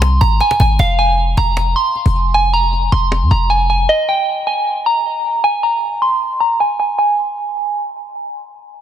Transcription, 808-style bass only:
0, 0, Header, 1, 2, 480
1, 0, Start_track
1, 0, Tempo, 387097
1, 983, Time_signature, 4, 2, 24, 8
1, 10932, End_track
2, 0, Start_track
2, 0, Title_t, "808-style bass"
2, 0, Program_c, 0, 38
2, 0, Note_on_c, 0, 36, 105
2, 244, Note_off_c, 0, 36, 0
2, 262, Note_on_c, 0, 32, 107
2, 493, Note_off_c, 0, 32, 0
2, 742, Note_on_c, 0, 32, 106
2, 973, Note_off_c, 0, 32, 0
2, 983, Note_on_c, 0, 29, 115
2, 1674, Note_off_c, 0, 29, 0
2, 1704, Note_on_c, 0, 29, 104
2, 2164, Note_off_c, 0, 29, 0
2, 2550, Note_on_c, 0, 29, 100
2, 3580, Note_off_c, 0, 29, 0
2, 3625, Note_on_c, 0, 29, 105
2, 3992, Note_on_c, 0, 41, 99
2, 4011, Note_off_c, 0, 29, 0
2, 4098, Note_off_c, 0, 41, 0
2, 4105, Note_on_c, 0, 29, 107
2, 4795, Note_off_c, 0, 29, 0
2, 10932, End_track
0, 0, End_of_file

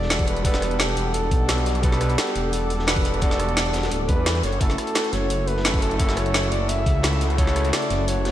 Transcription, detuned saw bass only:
0, 0, Header, 1, 2, 480
1, 0, Start_track
1, 0, Tempo, 346821
1, 620, Time_signature, 4, 2, 24, 8
1, 11508, End_track
2, 0, Start_track
2, 0, Title_t, "Detuned saw bass"
2, 0, Program_c, 0, 39
2, 0, Note_on_c, 0, 28, 98
2, 1322, Note_off_c, 0, 28, 0
2, 1339, Note_on_c, 0, 28, 96
2, 1801, Note_off_c, 0, 28, 0
2, 1818, Note_on_c, 0, 35, 104
2, 3001, Note_off_c, 0, 35, 0
2, 3261, Note_on_c, 0, 28, 98
2, 5162, Note_off_c, 0, 28, 0
2, 5178, Note_on_c, 0, 28, 97
2, 5396, Note_off_c, 0, 28, 0
2, 5418, Note_on_c, 0, 26, 79
2, 5657, Note_on_c, 0, 40, 87
2, 5677, Note_off_c, 0, 26, 0
2, 6120, Note_off_c, 0, 40, 0
2, 6138, Note_on_c, 0, 30, 82
2, 6356, Note_off_c, 0, 30, 0
2, 6377, Note_on_c, 0, 30, 104
2, 6595, Note_off_c, 0, 30, 0
2, 7098, Note_on_c, 0, 30, 99
2, 9001, Note_off_c, 0, 30, 0
2, 9020, Note_on_c, 0, 30, 101
2, 9481, Note_off_c, 0, 30, 0
2, 9498, Note_on_c, 0, 37, 102
2, 10680, Note_off_c, 0, 37, 0
2, 10938, Note_on_c, 0, 30, 97
2, 11508, Note_off_c, 0, 30, 0
2, 11508, End_track
0, 0, End_of_file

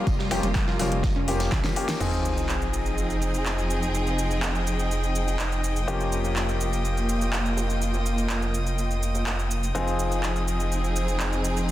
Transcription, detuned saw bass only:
0, 0, Header, 1, 2, 480
1, 0, Start_track
1, 0, Key_signature, -4, "minor"
1, 0, Tempo, 483871
1, 69, Time_signature, 4, 2, 24, 8
1, 11621, End_track
2, 0, Start_track
2, 0, Title_t, "Detuned saw bass"
2, 0, Program_c, 0, 39
2, 68, Note_on_c, 0, 29, 95
2, 395, Note_off_c, 0, 29, 0
2, 430, Note_on_c, 0, 29, 93
2, 755, Note_off_c, 0, 29, 0
2, 788, Note_on_c, 0, 29, 97
2, 1115, Note_off_c, 0, 29, 0
2, 1149, Note_on_c, 0, 29, 104
2, 1474, Note_off_c, 0, 29, 0
2, 1508, Note_on_c, 0, 36, 99
2, 1608, Note_off_c, 0, 36, 0
2, 1988, Note_on_c, 0, 29, 87
2, 5805, Note_off_c, 0, 29, 0
2, 5828, Note_on_c, 0, 29, 87
2, 9645, Note_off_c, 0, 29, 0
2, 9668, Note_on_c, 0, 29, 86
2, 11621, Note_off_c, 0, 29, 0
2, 11621, End_track
0, 0, End_of_file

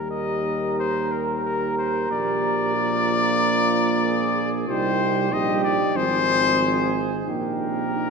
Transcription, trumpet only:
0, 0, Header, 1, 2, 480
1, 0, Start_track
1, 0, Key_signature, -3, "major"
1, 0, Tempo, 663717
1, 1528, Tempo, 643087
1, 1529, Time_signature, 4, 2, 24, 8
1, 4888, Tempo, 673401
1, 5947, End_track
2, 0, Start_track
2, 0, Title_t, "Trumpet"
2, 0, Program_c, 0, 56
2, 82, Note_on_c, 0, 75, 79
2, 558, Note_off_c, 0, 75, 0
2, 573, Note_on_c, 0, 72, 89
2, 808, Note_on_c, 0, 70, 70
2, 819, Note_off_c, 0, 72, 0
2, 1040, Note_off_c, 0, 70, 0
2, 1045, Note_on_c, 0, 70, 80
2, 1283, Note_off_c, 0, 70, 0
2, 1290, Note_on_c, 0, 72, 77
2, 1523, Note_off_c, 0, 72, 0
2, 1529, Note_on_c, 0, 74, 113
2, 3321, Note_off_c, 0, 74, 0
2, 3448, Note_on_c, 0, 72, 102
2, 3925, Note_on_c, 0, 75, 101
2, 3936, Note_off_c, 0, 72, 0
2, 4157, Note_off_c, 0, 75, 0
2, 4161, Note_on_c, 0, 74, 98
2, 4402, Note_on_c, 0, 72, 115
2, 4413, Note_off_c, 0, 74, 0
2, 5159, Note_off_c, 0, 72, 0
2, 5360, Note_on_c, 0, 70, 93
2, 5947, Note_off_c, 0, 70, 0
2, 5947, End_track
0, 0, End_of_file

